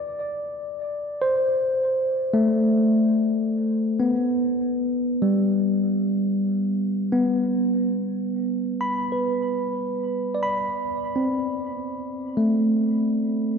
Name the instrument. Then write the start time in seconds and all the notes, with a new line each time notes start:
tine electric piano
Already playing: D5
1.22 C5
2.34 A3
4.00 B3
5.22 G3
7.12 B3
8.81 B5
9.12 B4
10.35 D5
10.43 B5
11.16 C4
12.37 A3